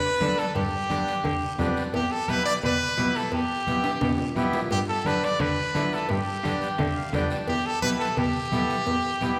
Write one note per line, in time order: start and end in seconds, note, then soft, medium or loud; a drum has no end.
0.00 0.40 B4 loud
0.21 0.29 D3 medium
0.21 0.45 B3 medium
0.21 0.45 D4 medium
0.21 0.46 A4 medium
0.21 high conga medium
0.21 low timbale medium
0.21 short guiro medium
0.38 0.55 A4 medium
0.38 short guiro medium
0.55 0.63 G2 medium
0.55 1.55 G4 medium
0.55 cowbell loud
0.55 high conga soft
0.55 low conga medium
0.55 long guiro medium
0.90 0.98 D3 medium
0.90 1.14 B3 medium
0.90 1.14 D4 medium
0.90 1.15 G4 medium
0.90 high conga medium
0.90 short guiro medium
1.08 short guiro medium
1.24 1.32 D3 loud
1.24 cowbell medium
1.24 high conga soft
1.24 low conga medium
1.24 long guiro medium
1.58 1.67 F2 loud
1.58 1.83 B3 medium
1.58 1.83 D4 medium
1.58 1.84 G4 loud
1.58 high conga medium
1.58 low conga medium
1.58 low timbale medium
1.58 short guiro medium
1.77 short guiro medium
1.94 2.02 E2 loud
1.94 2.13 G4 medium
1.94 cowbell loud
1.94 high conga soft
1.94 long guiro medium
2.12 2.31 A4 loud
2.28 2.37 B2 medium
2.28 2.53 B3 medium
2.28 2.53 E4 medium
2.28 2.53 G4 medium
2.28 2.45 B4 loud
2.28 high conga medium
2.28 short guiro medium
2.45 2.53 D5 loud
2.45 short guiro medium
2.63 2.71 B2 loud
2.63 3.18 B4 loud
2.63 cowbell medium
2.63 high conga soft
2.63 low conga medium
2.63 long guiro medium
2.97 3.05 B2 loud
2.97 3.22 B3 medium
2.97 3.22 E4 medium
2.97 3.22 G4 medium
2.97 high conga medium
2.97 low timbale medium
2.97 short guiro medium
3.15 3.33 A4 medium
3.15 short guiro medium
3.32 3.40 E2 medium
3.32 4.33 G4 medium
3.32 cowbell medium
3.32 long guiro medium
3.67 3.75 B2 medium
3.67 3.91 B3 medium
3.67 3.91 E4 medium
3.67 3.92 G4 medium
3.67 high conga medium
3.67 short guiro medium
3.84 high timbale medium
3.84 short guiro medium
4.01 4.10 B2 loud
4.01 cowbell medium
4.01 high conga soft
4.01 low conga medium
4.01 high timbale medium
4.01 long guiro medium
4.18 low timbale medium
4.36 4.44 B2 loud
4.36 4.60 B3 medium
4.36 4.61 E4 medium
4.36 4.61 G4 loud
4.36 high conga medium
4.36 short guiro medium
4.53 low timbale medium
4.53 short guiro medium
4.71 4.79 G2 loud
4.71 4.79 G4 medium
4.71 cowbell loud
4.71 high conga soft
4.71 long guiro medium
4.89 5.08 A4 loud
5.05 5.14 D3 medium
5.05 5.30 B3 medium
5.05 5.30 D4 medium
5.05 5.30 G4 medium
5.05 5.26 B4 loud
5.05 high conga medium
5.05 short guiro medium
5.24 5.43 D5 loud
5.24 short guiro medium
5.40 5.48 D3 loud
5.40 5.95 B4 loud
5.40 cowbell medium
5.40 high conga soft
5.40 low conga medium
5.40 long guiro medium
5.75 5.83 D3 loud
5.75 5.99 B3 medium
5.75 5.99 D4 medium
5.75 5.99 E4 medium
5.75 high conga medium
5.75 low timbale medium
5.75 short guiro medium
5.92 6.10 A4 medium
5.92 short guiro medium
6.09 6.18 G2 medium
6.09 7.10 G4 medium
6.09 cowbell loud
6.09 high conga soft
6.09 long guiro medium
6.43 6.51 D3 medium
6.43 6.68 B3 medium
6.43 6.68 D4 medium
6.43 6.69 G4 medium
6.43 high conga medium
6.43 short guiro medium
6.61 6.77 D5 medium
6.61 short guiro medium
6.78 6.86 D3 loud
6.78 6.94 E5 medium
6.78 cowbell medium
6.78 high conga soft
6.78 low conga medium
6.78 long guiro medium
6.96 7.12 F5 medium
7.13 7.21 D3 loud
7.13 7.38 B3 medium
7.13 7.38 D4 medium
7.13 7.38 G4 loud
7.13 7.30 G5 medium
7.13 high conga medium
7.13 low conga medium
7.13 low timbale medium
7.13 short guiro medium
7.30 7.47 A5 medium
7.30 short guiro medium
7.48 7.56 E2 medium
7.48 7.68 G4 medium
7.48 cowbell loud
7.48 high conga soft
7.48 long guiro medium
7.66 7.82 A4 loud
7.82 7.91 B2 medium
7.82 8.07 B3 medium
7.82 8.08 E4 medium
7.82 8.08 G4 medium
7.82 7.90 B4 loud
7.82 high conga medium
7.82 short guiro medium
8.00 8.20 A4 loud
8.00 short guiro medium
8.17 8.25 B2 loud
8.17 9.39 G4 medium
8.17 cowbell medium
8.17 high conga soft
8.17 low conga medium
8.17 long guiro medium
8.52 8.60 B2 loud
8.52 8.76 B3 medium
8.52 8.76 E4 medium
8.52 8.77 A4 medium
8.52 high conga medium
8.52 short guiro medium
8.70 short guiro medium
8.86 8.94 E2 medium
8.86 cowbell medium
8.86 high conga soft
8.86 long guiro medium
9.21 9.29 B2 medium
9.21 9.39 B3 medium
9.21 9.39 E4 medium
9.21 9.39 G4 medium
9.21 high conga medium
9.21 short guiro medium